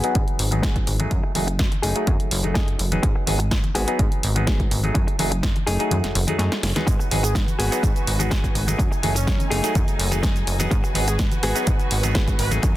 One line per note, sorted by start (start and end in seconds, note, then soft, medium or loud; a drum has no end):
0.00 0.49 F#3 medium
0.00 0.21 B3 medium
0.00 0.49 B3 medium
0.00 0.21 F#4 medium
0.00 0.21 G#4 medium
0.00 closed hi-hat soft
0.04 0.49 D#4 medium
0.04 0.49 G#4 loud
0.04 tambourine medium
0.15 0.26 G#2 medium
0.15 kick loud
0.15 closed hi-hat medium
0.15 tambourine medium
0.15 high conga medium
0.27 closed hi-hat soft
0.27 tambourine soft
0.39 0.65 G#1 loud
0.39 open hi-hat loud
0.51 0.96 F#3 medium
0.51 0.97 B3 medium
0.51 0.97 D#4 medium
0.51 0.97 G#4 medium
0.51 muted clean electric guitar stroke soft
0.51 closed hi-hat soft
0.51 tambourine medium
0.51 high conga medium
0.62 0.83 G#2 medium
0.62 0.75 B3 medium
0.62 0.75 F#4 medium
0.62 0.75 G#4 medium
0.62 kick loud
0.62 snare loud
0.62 closed hi-hat medium
0.76 kick medium
0.76 closed hi-hat soft
0.87 1.07 G#1 medium
0.87 muted clean electric guitar stroke soft
0.87 open hi-hat loud
0.99 1.32 F#3 medium
0.99 1.32 A3 medium
0.99 1.32 D#4 medium
0.99 1.33 G#4 medium
0.99 closed hi-hat soft
0.99 tambourine medium
0.99 high conga medium
1.11 1.21 F#2 loud
1.11 muted clean electric guitar stroke loud
1.11 kick loud
1.11 closed hi-hat medium
1.23 muted clean electric guitar stroke loud
1.23 tambourine soft
1.35 1.61 F#1 medium
1.35 1.47 F#3 medium
1.35 1.47 A3 medium
1.35 1.47 D#4 medium
1.35 1.47 G#4 medium
1.35 muted clean electric guitar stroke soft
1.35 open hi-hat medium
1.35 high conga medium
1.47 muted clean electric guitar stroke medium
1.47 closed hi-hat soft
1.47 tambourine medium
1.59 1.70 F#2 medium
1.59 muted clean electric guitar stroke soft
1.59 kick loud
1.59 snare loud
1.59 closed hi-hat medium
1.71 muted clean electric guitar stroke soft
1.71 closed hi-hat soft
1.71 tambourine soft
1.71 high conga medium
1.82 1.94 F#1 medium
1.82 2.13 A3 medium
1.82 2.13 D#4 medium
1.82 2.13 G#4 medium
1.82 open hi-hat loud
1.95 2.41 F#3 medium
1.95 2.41 A3 medium
1.95 2.41 D#4 medium
1.95 2.41 G#4 loud
1.95 closed hi-hat soft
2.07 2.18 F#2 medium
2.07 kick loud
2.07 closed hi-hat medium
2.07 tambourine medium
2.07 high conga medium
2.20 2.29 F#1 soft
2.20 closed hi-hat soft
2.20 tambourine soft
2.31 2.57 F#1 loud
2.31 open hi-hat loud
2.43 2.89 F#3 medium
2.43 2.89 A3 medium
2.43 2.89 D#4 medium
2.43 2.89 G#4 medium
2.43 muted clean electric guitar stroke soft
2.43 closed hi-hat soft
2.43 tambourine medium
2.43 high conga medium
2.54 2.75 F#2 medium
2.54 2.67 A3 medium
2.54 2.67 D#4 medium
2.54 2.67 G#4 medium
2.54 kick loud
2.54 snare loud
2.54 closed hi-hat medium
2.68 closed hi-hat soft
2.79 2.99 F#1 medium
2.79 muted clean electric guitar stroke soft
2.79 open hi-hat medium
2.92 3.24 F#3 medium
2.92 3.25 B3 medium
2.92 3.25 D#4 medium
2.92 3.25 G#4 medium
2.92 closed hi-hat medium
2.92 tambourine medium
2.92 high conga medium
3.03 3.14 G#2 medium
3.03 muted clean electric guitar stroke loud
3.03 kick loud
3.03 closed hi-hat medium
3.15 muted clean electric guitar stroke loud
3.15 tambourine soft
3.27 3.53 G#1 medium
3.27 3.39 F#3 medium
3.27 3.39 B3 medium
3.27 3.39 D#4 medium
3.27 3.39 G#4 medium
3.27 muted clean electric guitar stroke soft
3.27 open hi-hat medium
3.27 high conga medium
3.39 muted clean electric guitar stroke medium
3.39 closed hi-hat medium
3.39 tambourine medium
3.51 3.62 G#2 medium
3.51 muted clean electric guitar stroke soft
3.51 kick loud
3.51 snare loud
3.51 closed hi-hat medium
3.63 muted clean electric guitar stroke soft
3.63 closed hi-hat soft
3.63 tambourine soft
3.63 high conga medium
3.75 3.86 G#1 medium
3.75 4.05 B3 medium
3.75 4.05 F#4 medium
3.75 4.05 G#4 loud
3.75 open hi-hat loud
3.87 4.33 F#3 medium
3.87 4.33 B3 medium
3.87 4.33 D#4 medium
3.87 4.33 G#4 loud
3.87 closed hi-hat medium
3.87 tambourine medium
3.99 4.10 G#2 medium
3.99 kick loud
3.99 closed hi-hat medium
3.99 tambourine medium
3.99 high conga medium
4.11 closed hi-hat soft
4.11 tambourine soft
4.23 4.49 G#1 loud
4.23 open hi-hat medium
4.35 4.81 F#3 medium
4.35 4.81 B3 medium
4.35 4.81 D#4 medium
4.35 4.81 G#4 medium
4.35 muted clean electric guitar stroke soft
4.35 closed hi-hat medium
4.35 tambourine medium
4.35 high conga medium
4.47 4.67 G#2 medium
4.47 4.60 B3 medium
4.47 4.60 F#4 medium
4.47 4.60 G#4 medium
4.47 kick loud
4.47 snare loud
4.47 closed hi-hat medium
4.60 kick medium
4.60 closed hi-hat soft
4.60 tambourine soft
4.71 4.91 G#1 medium
4.71 muted clean electric guitar stroke soft
4.71 open hi-hat loud
4.83 5.16 F#3 medium
4.83 5.17 A3 medium
4.83 5.17 D#4 medium
4.83 5.17 G#4 medium
4.83 closed hi-hat medium
4.83 tambourine medium
4.83 high conga medium
4.94 5.06 F#2 medium
4.94 muted clean electric guitar stroke loud
4.94 kick loud
4.94 closed hi-hat medium
4.94 tambourine medium
5.07 muted clean electric guitar stroke loud
5.07 closed hi-hat soft
5.07 tambourine soft
5.19 5.45 F#1 medium
5.19 5.31 F#3 medium
5.19 5.31 A3 medium
5.19 5.31 D#4 medium
5.19 5.31 G#4 medium
5.19 muted clean electric guitar stroke soft
5.19 open hi-hat loud
5.19 high conga medium
5.31 muted clean electric guitar stroke medium
5.31 closed hi-hat medium
5.31 tambourine medium
5.43 5.54 F#2 medium
5.43 muted clean electric guitar stroke soft
5.43 kick loud
5.43 snare loud
5.43 closed hi-hat medium
5.55 muted clean electric guitar stroke soft
5.55 closed hi-hat soft
5.55 tambourine soft
5.55 high conga medium
5.67 5.78 F#1 medium
5.67 5.97 A3 medium
5.67 5.97 D#4 medium
5.67 5.97 G#4 medium
5.67 open hi-hat loud
5.79 6.25 F#3 medium
5.79 6.25 A3 medium
5.79 6.25 D#4 medium
5.79 6.25 G#4 loud
5.79 closed hi-hat medium
5.79 tambourine medium
5.91 6.02 F#2 medium
5.91 closed hi-hat medium
5.91 tambourine medium
5.91 high conga medium
6.04 6.13 F#1 soft
6.04 snare soft
6.04 closed hi-hat soft
6.04 tambourine soft
6.15 6.25 F#1 loud
6.15 open hi-hat loud
6.27 6.37 F#2 soft
6.27 6.73 F#3 medium
6.27 6.73 A3 medium
6.27 6.73 D#4 medium
6.27 6.73 G#4 medium
6.27 muted clean electric guitar stroke soft
6.27 closed hi-hat medium
6.27 tambourine medium
6.27 high conga medium
6.39 6.49 F#2 medium
6.39 6.52 A3 medium
6.39 6.52 D#4 medium
6.39 6.52 G#4 medium
6.39 snare medium
6.39 closed hi-hat medium
6.39 tambourine medium
6.51 snare medium
6.51 closed hi-hat soft
6.51 tambourine soft
6.63 6.73 F#1 medium
6.63 muted clean electric guitar stroke soft
6.63 snare medium
6.63 open hi-hat medium
6.75 7.08 F#3 medium
6.75 7.08 B3 medium
6.75 7.09 D#4 medium
6.75 7.09 G#4 medium
6.75 snare medium
6.75 closed hi-hat medium
6.75 tambourine medium
6.75 high conga medium
6.87 6.98 G#2 loud
6.87 8.77 F#4 medium
6.87 12.59 G#5 medium
6.87 muted clean electric guitar stroke loud
6.87 kick loud
6.87 closed hi-hat medium
6.87 cabasa medium
6.99 muted clean electric guitar stroke loud
6.99 tambourine soft
6.99 cabasa soft
7.11 7.37 G#1 medium
7.11 7.23 F#3 medium
7.11 7.23 B3 medium
7.11 7.23 D#4 medium
7.11 7.23 G#4 medium
7.11 muted clean electric guitar stroke soft
7.11 open hi-hat loud
7.11 high conga medium
7.23 7.35 G#4 medium
7.23 muted clean electric guitar stroke medium
7.23 closed hi-hat medium
7.23 tambourine medium
7.23 cabasa medium
7.35 7.45 G#2 medium
7.35 muted clean electric guitar stroke soft
7.35 kick loud
7.35 snare loud
7.35 closed hi-hat medium
7.35 cabasa medium
7.47 muted clean electric guitar stroke soft
7.47 closed hi-hat soft
7.47 tambourine soft
7.47 high conga medium
7.47 cabasa soft
7.59 7.70 G#1 medium
7.59 7.89 B3 medium
7.59 7.89 F#4 medium
7.59 7.89 G#4 medium
7.59 open hi-hat loud
7.71 8.17 F#3 medium
7.71 8.17 B3 medium
7.71 8.17 D#4 medium
7.71 8.17 G#4 medium
7.71 closed hi-hat medium
7.71 tambourine medium
7.71 cabasa medium
7.83 7.94 G#2 medium
7.83 kick loud
7.83 closed hi-hat medium
7.83 tambourine medium
7.83 high conga medium
7.83 cabasa medium
7.96 closed hi-hat soft
7.96 tambourine soft
7.96 cabasa soft
8.07 8.33 G#1 loud
8.07 open hi-hat loud
8.19 8.64 F#3 medium
8.19 8.65 B3 medium
8.19 8.65 D#4 medium
8.19 8.31 F#4 medium
8.19 8.65 G#4 medium
8.19 muted clean electric guitar stroke soft
8.19 closed hi-hat medium
8.19 tambourine medium
8.19 high conga medium
8.19 cabasa medium
8.31 8.51 G#2 medium
8.31 8.44 B3 medium
8.31 8.44 F#4 medium
8.31 8.44 G#4 medium
8.31 kick loud
8.31 snare loud
8.31 closed hi-hat medium
8.31 cabasa medium
8.44 kick medium
8.44 closed hi-hat soft
8.44 tambourine soft
8.44 cabasa soft
8.55 8.75 G#1 medium
8.55 muted clean electric guitar stroke soft
8.55 open hi-hat loud
8.67 9.00 F#3 medium
8.67 9.00 A3 medium
8.67 9.01 D#4 medium
8.67 9.01 G#4 medium
8.67 closed hi-hat medium
8.67 tambourine medium
8.67 high conga medium
8.67 cabasa medium
8.78 8.89 F#2 medium
8.78 10.69 A3 medium
8.78 10.69 D#4 medium
8.78 muted clean electric guitar stroke loud
8.78 kick loud
8.78 closed hi-hat medium
8.78 tambourine medium
8.78 cabasa medium
8.91 muted clean electric guitar stroke loud
8.91 tambourine soft
8.91 cabasa soft
9.03 9.29 F#1 medium
9.03 9.15 F#3 medium
9.03 9.15 A3 medium
9.03 9.15 D#4 medium
9.03 9.15 G#4 medium
9.03 muted clean electric guitar stroke soft
9.03 open hi-hat loud
9.03 high conga medium
9.15 9.64 C#4 medium
9.15 muted clean electric guitar stroke medium
9.15 closed hi-hat medium
9.15 tambourine medium
9.15 cabasa medium
9.26 9.38 F#2 medium
9.26 muted clean electric guitar stroke soft
9.26 kick loud
9.26 snare loud
9.26 closed hi-hat medium
9.26 cabasa medium
9.39 muted clean electric guitar stroke soft
9.39 closed hi-hat soft
9.39 tambourine soft
9.39 high conga medium
9.39 cabasa soft
9.50 9.61 F#1 medium
9.50 9.81 A3 medium
9.50 9.81 D#4 medium
9.50 9.81 G#4 medium
9.50 open hi-hat loud
9.63 10.08 F#3 medium
9.63 10.09 A3 medium
9.63 10.09 D#4 medium
9.63 10.09 G#4 loud
9.63 closed hi-hat medium
9.63 tambourine medium
9.63 cabasa medium
9.75 9.86 F#2 medium
9.75 kick loud
9.75 closed hi-hat medium
9.75 tambourine medium
9.75 high conga loud
9.75 cabasa medium
9.88 9.97 F#1 soft
9.88 closed hi-hat soft
9.88 tambourine soft
9.88 cabasa soft
9.99 10.25 F#1 loud
9.99 open hi-hat loud
10.11 10.56 F#3 medium
10.11 10.57 A3 medium
10.11 10.57 D#4 medium
10.11 10.57 G#4 medium
10.11 muted clean electric guitar stroke soft
10.11 closed hi-hat medium
10.11 tambourine medium
10.11 high conga medium
10.11 cabasa medium
10.23 10.43 F#2 medium
10.23 10.36 A3 medium
10.23 10.36 D#4 medium
10.23 10.36 G#4 medium
10.23 kick loud
10.23 snare loud
10.23 closed hi-hat medium
10.23 tambourine medium
10.23 cabasa soft
10.36 closed hi-hat soft
10.36 tambourine soft
10.36 cabasa soft
10.47 10.67 F#1 medium
10.47 muted clean electric guitar stroke soft
10.47 open hi-hat loud
10.59 10.92 F#3 medium
10.59 10.92 B3 medium
10.59 10.92 D#4 medium
10.59 10.93 G#4 medium
10.59 closed hi-hat medium
10.59 tambourine medium
10.59 high conga medium
10.59 cabasa medium
10.71 10.82 G#2 medium
10.71 12.61 F#4 medium
10.71 12.61 B4 medium
10.71 muted clean electric guitar stroke loud
10.71 kick loud
10.71 closed hi-hat medium
10.71 cabasa medium
10.84 muted clean electric guitar stroke loud
10.84 tambourine soft
10.84 cabasa soft
10.94 11.21 G#1 medium
10.94 11.06 F#3 medium
10.94 11.07 B3 medium
10.94 11.07 D#4 medium
10.94 11.07 G#4 medium
10.94 muted clean electric guitar stroke soft
10.94 open hi-hat loud
10.94 high conga medium
11.08 11.19 G#4 medium
11.08 muted clean electric guitar stroke medium
11.08 closed hi-hat soft
11.08 tambourine medium
11.08 cabasa medium
11.19 11.30 G#2 medium
11.19 muted clean electric guitar stroke soft
11.19 kick loud
11.19 snare loud
11.19 closed hi-hat medium
11.19 cabasa soft
11.32 muted clean electric guitar stroke soft
11.32 closed hi-hat soft
11.32 tambourine soft
11.32 high conga medium
11.32 cabasa soft
11.43 11.53 G#1 medium
11.43 11.74 B3 medium
11.43 11.74 F#4 medium
11.43 11.74 G#4 medium
11.43 open hi-hat loud
11.55 12.00 F#3 medium
11.55 12.01 B3 medium
11.55 12.01 D#4 medium
11.55 12.01 G#4 loud
11.55 closed hi-hat soft
11.55 tambourine medium
11.55 cabasa medium
11.67 11.77 G#2 medium
11.67 kick loud
11.67 closed hi-hat medium
11.67 tambourine medium
11.67 high conga medium
11.67 cabasa medium
11.79 closed hi-hat soft
11.79 tambourine soft
11.79 cabasa soft
11.91 12.17 G#1 loud
11.91 open hi-hat loud
12.03 12.48 F#3 medium
12.03 12.49 B3 medium
12.03 12.49 D#4 medium
12.03 12.49 G#4 medium
12.03 muted clean electric guitar stroke soft
12.03 closed hi-hat soft
12.03 tambourine medium
12.03 high conga medium
12.03 cabasa medium
12.15 12.35 G#2 medium
12.15 12.28 B3 medium
12.15 12.28 F#4 medium
12.15 12.28 G#4 medium
12.15 kick loud
12.15 snare loud
12.15 closed hi-hat medium
12.15 cabasa medium
12.27 kick medium
12.27 closed hi-hat soft
12.27 tambourine soft
12.27 cabasa soft
12.39 12.59 G#1 medium
12.39 12.52 B4 medium
12.39 muted clean electric guitar stroke soft
12.39 open hi-hat loud
12.51 12.77 F#3 medium
12.51 12.77 A3 medium
12.51 12.77 D#4 medium
12.51 12.77 G#4 medium
12.51 closed hi-hat soft
12.51 tambourine medium
12.51 high conga medium
12.51 cabasa medium
12.63 12.74 F#2 medium
12.63 12.77 A3 medium
12.63 12.77 D#4 medium
12.63 12.77 G#5 medium
12.63 muted clean electric guitar stroke loud
12.63 kick loud
12.63 closed hi-hat medium
12.63 cabasa medium